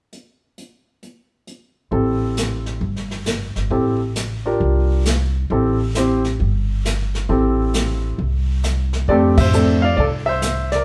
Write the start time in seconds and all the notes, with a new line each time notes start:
0.13 closed hi-hat
0.58 closed hi-hat
1.03 closed hi-hat
1.47 closed hi-hat
1.91 A1 C4 E4 G4 A4, brush sweep, kick
2.37 snare, hi-hat pedal
2.66 snare
2.81 G1, brush sweep, kick
2.96 snare
3.11 snare
3.26 snare, hi-hat pedal
3.56 G1, snare
3.70 A1 C4 E4 G4 A4, brush sweep, kick
4.16 snare, hi-hat pedal
4.46 D4 F4 G4 A#4
4.60 C2, brush sweep, kick
5.05 snare, hi-hat pedal
5.50 A1 C4 E4 G4 A4, brush sweep, kick
5.94 C4 E4 G4 C5, snare, hi-hat pedal
6.24 snare
6.40 G1, brush sweep, kick
6.85 snare, hi-hat pedal
7.15 snare
7.29 A1 C4 E4 G4 A4, brush sweep, kick
7.74 snare, hi-hat pedal
8.18 C2, brush sweep, kick
8.63 snare, hi-hat pedal
8.93 snare
9.08 F2 A3 C4 D4 G4 A4 D5, brush sweep, kick
9.37 C5 E5, kick, ride
9.53 A3 C4 D4 A4, hi-hat pedal
9.82 D5 F5
9.97 C2 A4 D5, brush sweep, kick
10.26 C5 E5
10.42 snare, hi-hat pedal
10.72 A#4 D5, snare